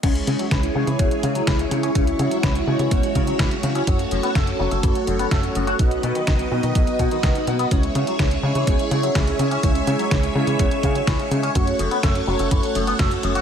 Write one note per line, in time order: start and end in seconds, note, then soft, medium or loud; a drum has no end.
0.03 0.22 C#2 medium
0.03 0.12 C#3 medium
0.03 0.72 G#3 medium
0.03 0.72 C#4 medium
0.03 0.72 E4 medium
0.03 3.83 E4 medium
0.03 1.93 G#4 medium
0.03 0.72 C#5 medium
0.03 5.75 C#5 medium
0.03 kick loud
0.03 closed hi-hat medium
0.03 crash medium
0.15 closed hi-hat soft
0.27 0.37 C#3 medium
0.27 0.36 C#3 medium
0.27 closed hi-hat medium
0.39 0.44 F#3 loud
0.39 closed hi-hat soft
0.51 0.70 C#2 loud
0.51 0.60 E3 loud
0.51 kick loud
0.51 snare loud
0.51 closed hi-hat medium
0.63 closed hi-hat soft
0.75 0.84 C#3 loud
0.75 0.85 C#3 loud
0.75 1.92 G#3 medium
0.75 1.92 C#4 medium
0.75 1.92 E4 medium
0.75 1.92 C#5 loud
0.87 0.97 C#3 medium
0.87 0.96 E3 medium
0.87 closed hi-hat soft
0.99 1.09 C#2 medium
0.99 1.08 B2 medium
0.99 kick loud
0.99 closed hi-hat medium
1.11 closed hi-hat soft
1.23 1.42 C#3 medium
1.23 1.32 C#3 medium
1.23 closed hi-hat medium
1.35 1.40 F#3 loud
1.35 closed hi-hat soft
1.47 1.66 C#2 medium
1.47 1.56 E3 medium
1.47 kick loud
1.47 snare loud
1.47 closed hi-hat medium
1.59 closed hi-hat soft
1.71 1.80 C#3 medium
1.71 1.90 C#3 medium
1.71 closed hi-hat medium
1.83 1.88 C#4 loud
1.83 closed hi-hat soft
1.95 2.14 C#2 loud
1.95 2.04 C#3 medium
1.95 2.64 G#3 medium
1.95 2.64 E4 medium
1.95 7.67 F#4 medium
1.95 kick loud
1.95 closed hi-hat medium
2.07 closed hi-hat soft
2.19 2.29 C#3 medium
2.19 2.28 C#3 loud
2.19 closed hi-hat medium
2.31 2.36 F#3 loud
2.31 closed hi-hat soft
2.43 2.62 C#2 loud
2.43 2.52 E3 loud
2.43 kick loud
2.43 snare loud
2.43 closed hi-hat medium
2.55 closed hi-hat soft
2.67 2.77 C#3 loud
2.67 2.76 C#3 loud
2.67 3.84 G#3 medium
2.67 3.84 C#4 medium
2.67 3.84 E4 medium
2.67 3.84 C#5 loud
2.79 2.89 C#3 medium
2.79 2.88 E3 medium
2.79 closed hi-hat soft
2.91 3.01 C#2 medium
2.91 3.00 B2 medium
2.91 kick loud
2.91 closed hi-hat medium
3.03 closed hi-hat soft
3.15 3.24 C#3 medium
3.15 3.34 C#3 medium
3.15 kick medium
3.15 closed hi-hat medium
3.27 3.32 F#3 loud
3.27 closed hi-hat soft
3.39 3.49 C#2 medium
3.39 3.48 E3 loud
3.39 kick loud
3.39 snare loud
3.39 closed hi-hat medium
3.51 closed hi-hat soft
3.63 3.72 C#3 loud
3.63 3.82 C#3 loud
3.63 closed hi-hat medium
3.75 3.80 C#4 loud
3.75 closed hi-hat soft
3.87 4.06 F#2 loud
3.87 3.96 F#3 medium
3.87 4.56 A3 medium
3.87 4.56 C#4 medium
3.87 4.56 F#4 medium
3.87 5.77 A4 medium
3.87 4.56 C#5 medium
3.87 kick loud
3.87 closed hi-hat medium
3.99 closed hi-hat soft
4.11 4.21 F#1 medium
4.11 4.20 F#2 loud
4.11 closed hi-hat medium
4.23 4.28 B3 loud
4.23 closed hi-hat soft
4.35 4.54 F#2 loud
4.35 4.44 A3 loud
4.35 kick loud
4.35 snare loud
4.35 closed hi-hat medium
4.47 closed hi-hat soft
4.59 4.69 F#1 loud
4.59 4.68 F#3 loud
4.59 5.76 A3 medium
4.59 5.76 C#4 medium
4.59 5.76 F#4 medium
4.59 5.76 C#5 loud
4.71 4.81 F#1 medium
4.71 4.80 A3 medium
4.71 closed hi-hat soft
4.83 4.93 F#2 medium
4.83 4.92 E3 medium
4.83 kick loud
4.83 closed hi-hat medium
4.95 closed hi-hat soft
5.07 5.26 F#1 medium
5.07 5.16 F#2 loud
5.07 closed hi-hat medium
5.19 5.24 B3 loud
5.19 closed hi-hat soft
5.31 5.50 F#2 medium
5.31 5.40 A3 medium
5.31 kick loud
5.31 snare loud
5.31 closed hi-hat medium
5.43 closed hi-hat soft
5.55 5.74 F#1 medium
5.55 5.64 F#2 medium
5.55 closed hi-hat medium
5.67 5.72 F#4 loud
5.67 closed hi-hat soft
5.79 5.98 B1 loud
5.79 5.88 B2 medium
5.79 6.48 B3 medium
5.79 6.48 D#4 medium
5.79 6.48 F#4 medium
5.79 7.69 B4 medium
5.79 7.69 D#5 medium
5.79 6.48 D#5 medium
5.79 kick loud
5.79 closed hi-hat medium
5.91 closed hi-hat soft
6.03 6.12 B2 loud
6.03 6.13 B2 medium
6.03 closed hi-hat medium
6.15 6.20 D#3 loud
6.15 closed hi-hat soft
6.27 6.46 B1 loud
6.27 6.36 D#3 loud
6.27 kick loud
6.27 snare loud
6.27 closed hi-hat medium
6.39 closed hi-hat soft
6.51 6.60 B2 loud
6.51 6.61 B2 loud
6.51 7.09 B3 loud
6.51 7.09 D#4 medium
6.51 7.09 F#4 medium
6.51 7.09 D#5 loud
6.63 6.73 B2 medium
6.63 6.72 D#3 medium
6.63 closed hi-hat soft
6.75 6.85 B1 medium
6.75 6.84 A2 medium
6.75 kick loud
6.75 closed hi-hat medium
6.87 closed hi-hat soft
6.99 7.08 B2 loud
6.99 7.09 B2 medium
6.99 kick medium
6.99 closed hi-hat medium
7.11 7.16 D#3 loud
7.11 7.68 B3 loud
7.11 7.68 D#4 medium
7.11 7.68 F#4 medium
7.11 7.68 D#5 loud
7.11 closed hi-hat soft
7.23 7.33 B1 loud
7.23 7.32 D#3 medium
7.23 kick loud
7.23 snare loud
7.23 closed hi-hat medium
7.35 closed hi-hat soft
7.47 7.56 B2 medium
7.47 7.66 B2 loud
7.47 closed hi-hat medium
7.59 7.64 B3 loud
7.59 closed hi-hat soft
7.71 7.90 C#2 loud
7.71 7.80 C#3 medium
7.71 8.40 G#3 medium
7.71 8.40 C#4 medium
7.71 8.40 E4 medium
7.71 11.51 G#4 medium
7.71 13.41 C#5 medium
7.71 8.40 C#5 medium
7.71 11.52 E5 medium
7.71 kick loud
7.71 closed hi-hat medium
7.83 closed hi-hat soft
7.95 8.05 C#3 medium
7.95 8.04 C#3 loud
7.95 closed hi-hat medium
8.07 8.12 F#3 loud
8.07 closed hi-hat soft
8.19 8.38 C#2 loud
8.19 8.28 E3 loud
8.19 kick loud
8.19 snare loud
8.19 closed hi-hat medium
8.31 closed hi-hat soft
8.43 8.53 C#3 loud
8.43 8.52 C#3 loud
8.43 9.60 G#3 loud
8.43 9.60 C#4 medium
8.43 9.60 E4 medium
8.43 9.60 C#5 loud
8.55 8.65 C#3 medium
8.55 8.64 E3 medium
8.55 closed hi-hat soft
8.67 8.77 C#2 medium
8.67 8.76 B2 medium
8.67 kick loud
8.67 closed hi-hat medium
8.79 closed hi-hat soft
8.91 9.10 C#3 medium
8.91 9.00 C#3 medium
8.91 closed hi-hat medium
9.03 9.08 F#3 loud
9.03 closed hi-hat soft
9.15 9.34 C#2 medium
9.15 9.24 E3 medium
9.15 kick loud
9.15 snare loud
9.15 closed hi-hat medium
9.27 closed hi-hat soft
9.39 9.58 C#3 medium
9.39 9.48 C#3 loud
9.39 closed hi-hat medium
9.51 9.56 C#4 loud
9.51 closed hi-hat soft
9.63 9.82 C#2 medium
9.63 9.72 C#3 medium
9.63 10.32 G#3 medium
9.63 10.32 C#4 medium
9.63 10.32 E4 medium
9.63 10.32 C#5 medium
9.63 kick loud
9.63 closed hi-hat medium
9.75 closed hi-hat soft
9.87 9.97 C#3 medium
9.87 9.96 C#3 loud
9.87 closed hi-hat medium
9.99 10.04 F#3 loud
9.99 closed hi-hat soft
10.11 10.30 C#2 loud
10.11 10.20 E3 loud
10.11 kick loud
10.11 snare loud
10.11 closed hi-hat medium
10.23 closed hi-hat soft
10.35 10.45 C#3 loud
10.35 10.44 C#3 loud
10.35 11.52 G#3 loud
10.35 11.52 C#4 medium
10.35 11.52 E4 medium
10.35 11.52 C#5 loud
10.47 10.57 C#3 medium
10.47 10.56 E3 medium
10.47 closed hi-hat soft
10.59 10.69 C#2 medium
10.59 10.68 B2 medium
10.59 kick loud
10.59 closed hi-hat medium
10.71 closed hi-hat soft
10.83 10.92 C#3 medium
10.83 11.02 C#3 medium
10.83 kick medium
10.83 closed hi-hat medium
10.95 11.00 F#3 loud
10.95 closed hi-hat soft
11.07 11.17 C#2 medium
11.07 11.16 E3 medium
11.07 kick loud
11.07 snare loud
11.07 closed hi-hat medium
11.19 closed hi-hat soft
11.31 11.50 C#3 loud
11.31 11.40 C#3 medium
11.31 closed hi-hat medium
11.43 11.48 C#4 loud
11.43 closed hi-hat soft
11.55 11.74 F#2 loud
11.55 11.64 F#3 medium
11.55 12.24 A3 medium
11.55 12.24 C#4 medium
11.55 12.24 F#4 medium
11.55 13.41 A4 medium
11.55 12.24 C#5 medium
11.55 13.41 F#5 medium
11.55 kick loud
11.55 closed hi-hat medium
11.67 closed hi-hat soft
11.79 11.89 F#1 medium
11.79 11.88 F#2 loud
11.79 closed hi-hat medium
11.91 11.96 B3 loud
11.91 closed hi-hat soft
12.03 12.22 F#2 loud
12.03 12.12 A3 loud
12.03 kick loud
12.03 snare loud
12.03 closed hi-hat medium
12.15 closed hi-hat soft
12.27 12.37 F#1 loud
12.27 12.36 F#3 medium
12.27 13.41 A3 medium
12.27 13.41 C#4 medium
12.27 13.41 F#4 medium
12.27 13.41 C#5 loud
12.39 12.49 F#1 medium
12.39 12.48 A3 medium
12.39 closed hi-hat soft
12.51 12.61 F#2 medium
12.51 12.60 E3 medium
12.51 kick loud
12.51 closed hi-hat medium
12.63 closed hi-hat soft
12.75 12.94 F#1 medium
12.75 12.84 F#2 loud
12.75 closed hi-hat medium
12.87 12.92 B3 loud
12.87 closed hi-hat soft
12.99 13.18 F#2 medium
12.99 13.08 A3 loud
12.99 kick loud
12.99 snare loud
12.99 closed hi-hat medium
13.11 closed hi-hat soft
13.23 13.41 F#1 medium
13.23 13.32 F#2 loud
13.23 closed hi-hat medium
13.35 13.40 F#4 loud
13.35 closed hi-hat soft